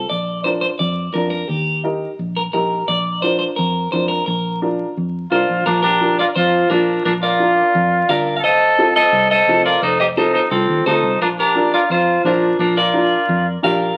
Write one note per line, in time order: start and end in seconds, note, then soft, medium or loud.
0.09 0.67 A#1 medium
0.09 0.44 D5 medium
0.44 0.70 D4 medium
0.44 0.70 F4 medium
0.44 0.70 A#4 medium
0.44 0.49 C5 medium
0.61 0.66 C5 medium
0.79 1.08 F2 medium
0.79 1.12 D5 medium
1.14 1.43 F2 medium
1.14 1.40 D4 medium
1.14 1.40 F4 medium
1.14 1.29 A#4 medium
1.14 1.40 A#4 medium
1.30 1.48 A#4 medium
1.48 2.05 D#2 medium
1.48 1.84 G4 medium
1.84 2.09 D#4 medium
1.84 2.09 G4 medium
1.84 2.09 A#4 medium
2.19 2.47 A#1 medium
2.36 2.41 A#4 medium
2.53 2.82 A#1 medium
2.53 2.78 D#4 medium
2.53 2.78 G4 medium
2.53 2.86 A#4 medium
2.53 2.79 A#4 medium
2.88 3.44 A#1 loud
2.88 3.22 D5 loud
3.22 3.48 D4 medium
3.22 3.48 F4 medium
3.22 3.48 A#4 medium
3.22 3.38 C5 medium
3.39 3.44 C5 medium
3.56 3.86 F2 loud
3.56 3.90 A#4 medium
3.92 4.21 F2 medium
3.92 4.17 D4 medium
3.92 4.17 F4 medium
3.92 4.18 A#4 medium
3.92 4.08 C5 medium
4.08 4.25 A#4 medium
4.26 4.83 A#1 loud
4.26 4.59 A#4 medium
4.62 4.87 D4 medium
4.62 4.87 F4 medium
4.62 4.87 A#4 medium
4.97 5.25 F2 medium
5.31 5.48 C2 medium
5.31 5.56 D4 medium
5.31 5.64 F4 medium
5.31 5.56 F4 medium
5.31 5.64 F4 medium
5.31 5.56 A#4 medium
5.31 5.64 C5 medium
5.49 5.65 A#1 medium
5.66 6.22 A#1 loud
5.66 5.83 D4 medium
5.66 5.83 F4 medium
5.66 5.81 A#4 medium
5.83 6.16 D4 medium
5.83 6.16 G4 medium
5.83 6.16 A#4 medium
6.01 6.26 D4 medium
6.01 6.26 F4 medium
6.01 6.26 A#4 medium
6.19 6.27 F4 medium
6.19 6.25 A#4 medium
6.19 6.24 D5 medium
6.35 6.64 F2 medium
6.35 6.68 F4 medium
6.35 6.69 F4 medium
6.35 6.68 C5 medium
6.70 6.98 A#1 medium
6.70 7.03 D4 medium
6.70 6.95 D4 medium
6.70 6.95 F4 medium
6.70 7.03 F4 medium
6.70 7.04 A#4 medium
6.70 6.95 A#4 medium
7.05 7.61 A#1 medium
7.05 7.13 D4 medium
7.05 7.11 F4 medium
7.05 7.10 A#4 medium
7.23 8.05 F4 medium
7.23 8.06 A#4 medium
7.23 8.09 D5 medium
7.39 7.64 D4 medium
7.39 7.64 F4 medium
7.39 7.64 A#4 medium
7.75 8.02 F2 loud
8.09 8.44 G1 medium
8.09 8.33 D4 medium
8.09 8.34 F4 medium
8.09 8.34 A#4 medium
8.09 8.35 A#4 medium
8.09 8.35 D5 medium
8.09 8.35 F5 loud
8.37 8.44 A4 medium
8.37 8.43 F5 medium
8.44 8.99 F1 loud
8.44 8.92 A4 loud
8.44 8.92 C5 medium
8.44 8.92 D#5 medium
8.78 9.03 C4 medium
8.78 9.03 F4 medium
8.78 9.03 A4 medium
8.96 9.28 A4 medium
8.96 9.29 C5 medium
8.96 9.28 D#5 loud
9.12 9.40 C2 loud
9.30 9.63 A4 medium
9.30 9.63 C5 medium
9.30 9.63 D#5 loud
9.47 9.75 F1 medium
9.47 9.72 C4 medium
9.47 9.73 F4 medium
9.47 9.73 A4 medium
9.65 9.81 F4 medium
9.65 9.81 A#4 medium
9.65 9.81 D5 medium
9.82 10.38 F1 loud
9.82 9.99 D#4 medium
9.82 9.99 A4 medium
9.82 9.99 C5 medium
10.00 10.08 G4 medium
10.00 10.05 C5 medium
10.00 10.05 D#5 loud
10.17 10.41 C4 medium
10.17 10.33 D#4 medium
10.17 10.41 F4 medium
10.17 10.41 A4 medium
10.17 10.34 A4 medium
10.17 10.33 C5 medium
10.34 10.50 D#4 medium
10.34 10.41 A4 medium
10.34 10.40 C5 medium
10.51 10.65 C2 loud
10.51 10.86 C4 medium
10.51 10.84 F4 medium
10.51 10.85 A4 medium
10.68 10.84 D#2 medium
10.86 11.01 D2 medium
10.86 11.10 C4 medium
10.86 11.19 D#4 medium
10.86 11.11 F4 medium
10.86 11.19 A4 medium
10.86 11.11 A4 medium
10.86 11.21 C5 loud
11.03 11.20 C2 medium
11.20 11.75 A#1 loud
11.20 11.29 D4 medium
11.20 11.27 F4 medium
11.20 11.27 A#4 medium
11.39 11.71 D4 medium
11.39 11.71 G4 medium
11.39 11.73 A#4 medium
11.55 11.79 D4 medium
11.55 11.80 F4 medium
11.55 11.80 A#4 medium
11.74 11.90 F4 medium
11.74 11.79 A#4 medium
11.74 11.79 D5 medium
11.90 12.18 F2 loud
11.90 12.23 F4 medium
11.90 12.24 F4 medium
11.90 12.25 C5 medium
12.24 12.52 A#1 medium
12.24 12.49 D4 medium
12.24 12.57 D4 medium
12.24 12.49 F4 medium
12.24 12.58 F4 medium
12.24 12.59 A#4 medium
12.24 12.49 C5 medium
12.59 13.14 A#1 loud
12.59 12.75 D4 medium
12.59 12.76 F4 medium
12.59 12.76 A#4 medium
12.77 13.47 F4 medium
12.77 13.59 A#4 medium
12.77 13.63 D5 medium
12.93 13.18 D4 medium
12.93 13.18 F4 medium
12.93 13.18 A#4 medium
13.29 13.56 F2 loud
13.62 13.91 A#1 medium
13.62 13.87 D4 medium
13.62 13.87 F4 medium
13.62 13.87 G4 medium
13.62 13.95 A#4 medium
13.62 13.96 D5 medium
13.62 13.96 F5 loud